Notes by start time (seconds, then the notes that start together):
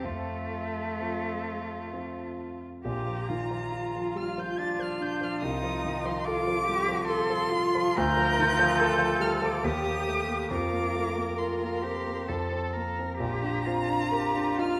0.03 F2 A3 F4 A4
1.00 F3 C4 F4
1.93 F3 C4 F4
2.85 A#1 F4 G4 A#5
3.08 F3
3.28 D#3 F4
3.51 F3
3.72 F4
3.96 F3
4.15 G3 F6
4.38 F3 G6
4.58 D4 F4 A6
4.79 F3 F6
5.00 D4 G6
5.21 F3 F6
5.41 C2 D#4 D#6
5.63 F3
5.85 D#3
6.05 F3 C6
6.24 F4 A4 D6
6.47 F3
6.66 G3 G4
6.88 F3
7.06 A4 C6
7.30 F3
7.49 F4
7.75 F3
7.95 D2 F4 A#4 G6
8.17 F3
8.39 D#3
8.59 F3
8.79 A4 A#4
8.99 F3
9.20 G3 F6
9.42 F3 D6
9.64 D#2 G4 D#6
9.86 A#3
10.08 A3
10.28 A#3
10.50 F2 F4 A#4 D6
10.72 A#3
10.95 A3
11.17 A#3
11.38 F4 A#4 C6
11.63 A#3
11.82 C4 G4
12.06 A#3
12.28 F2 A4
12.52 C4
12.73 A#3 A#4
12.99 C4
13.18 A#1 F4 G4 A#5
13.42 D4
13.66 C4 F4
13.88 D4
14.12 G4 A#4
14.35 D4
14.58 D#4 F4 F6